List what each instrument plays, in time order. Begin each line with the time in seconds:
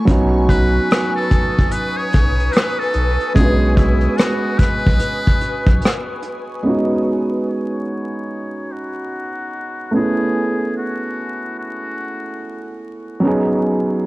Already playing: ambient pad G#5 C#6
0.05 analog synth bass B1, felt piano F#3 B3 C#4, ambient pad B4 D#6, kick, closed hi-hat
0.09 felt piano D#4 F#4
0.49 muted trumpet B4, kick, closed hi-hat
0.90 cross-stick, closed hi-hat
1.16 muted trumpet A4
1.31 kick, closed hi-hat
1.58 analog synth bass G#1, kick
1.71 muted trumpet B4, closed hi-hat
1.97 muted trumpet C#5
2.12 analog synth bass B1, kick, closed hi-hat
2.40 closed hi-hat
2.51 muted trumpet A#4 B4, closed hi-hat
2.57 cross-stick
2.79 muted trumpet A4
2.93 analog synth bass B1, closed hi-hat
3.20 closed hi-hat
3.34 analog synth bass B1, felt piano G#3 B3 C#4, muted trumpet G#4, ambient pad G#5, kick, closed hi-hat
3.39 felt piano D4 F#4
3.45 felt piano D#5
3.77 muted trumpet E4, kick, closed hi-hat
4.01 closed hi-hat
4.18 muted trumpet F#4, cross-stick, closed hi-hat
4.59 muted trumpet B4, kick, cross-stick, closed hi-hat
4.87 analog synth bass B1, kick
5.00 closed hi-hat
5.27 kick
5.41 closed hi-hat
5.67 analog synth bass B1, kick, closed hi-hat
5.82 cross-stick, closed hi-hat
6.22 closed hi-hat
6.63 felt piano G#3 B3 C#4
6.67 felt piano D#4 F#4
7.49 muted trumpet C#5
8.72 muted trumpet F#4
9.91 felt piano A3 B3 C#4
9.96 felt piano E4 G#4, muted trumpet G#4
10.77 muted trumpet F#4
11.59 muted trumpet F#4
13.20 felt piano F#3 B3 C#4
13.25 felt piano D#4 G#4